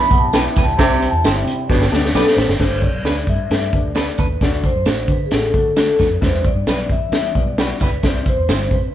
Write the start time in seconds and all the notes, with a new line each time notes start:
Already playing: G3 B3 E4 B5
0.11 B1 B3 E4 G4 F#5, kick, closed hi-hat
0.19 A5
0.33 B3 E4 G4 B4 E5 G5, snare, closed hi-hat
0.56 C#2 E4 G4 B4, kick, snare, closed hi-hat
0.63 A5
0.78 C2 C3 C4 E4 G4 E5 G5, kick, snare, closed hi-hat
1.02 closed hi-hat
1.09 E2 A5
1.24 G1 C4 E4 G4 C5 E5 G5, snare, closed hi-hat
1.46 C3, closed hi-hat
1.69 G1 B2 B3 D4 G4 D5, kick, snare
1.82 snare
1.92 D2 B3 D4 G4 D5, snare
2.05 snare
2.14 B1 B3 D4 G4 A4 B4 D5, snare
2.27 snare
2.32 C5
2.37 A1 B4, snare
2.48 G1, snare
2.59 G1 A3 D4 G4 B4 C5, kick, snare, crash
2.78 C#5
2.82 D5, kick, closed hi-hat
2.93 B1
3.05 D2 A3 D4 G4 A4 B4, snare, closed hi-hat
3.27 G2 E5, kick, closed hi-hat
3.50 G2 A3 D4 G4 B4, snare, closed hi-hat
3.73 D2 A3 D4 G4 B4 D5, kick, closed hi-hat
3.95 A3 D4 G4 A4 B4, snare, closed hi-hat
4.18 D#2 D4 A4 B4, kick, closed hi-hat
4.41 D2 A3 D4 F#4 D5, kick, snare, closed hi-hat
4.64 C5, kick, closed hi-hat
4.75 F#2
4.86 A1 A3 D4 F#4 D5, snare, closed hi-hat
5.08 D3 B4, kick, closed hi-hat
5.26 G#4
5.31 A1 A3 D4 F#4 A4 D5, snare, closed hi-hat
5.54 D3 A3 D4 F#4 D5, kick, closed hi-hat
5.77 A3 D4 F#4 A4 D5, snare, closed hi-hat
5.99 F2 A3 D4 F#4 B4, kick, snare, closed hi-hat
6.21 E2 G3 B3 E4 B4 C5, kick, snare, closed hi-hat
6.45 D5, kick, closed hi-hat
6.55 G2
6.67 B1 G3 B3 E4 G4 B4, snare, closed hi-hat
6.90 E3 E5, kick, closed hi-hat
7.12 E3 G3 B3 E4 B4, snare, closed hi-hat
7.35 B1 G3 B3 E4 B4 D5, kick, closed hi-hat
7.57 G3 B3 E4 F#4 G4 B4, snare, closed hi-hat
7.80 C#2 E4 G4 B4, kick, snare, closed hi-hat
8.03 C2 G3 C4 E4 C5 D5, kick, snare, closed hi-hat
8.21 B4
8.26 C5, kick, closed hi-hat
8.37 E2
8.48 G1 G3 C4 E4 G4 C5, snare, closed hi-hat
8.71 C3 B4, kick, closed hi-hat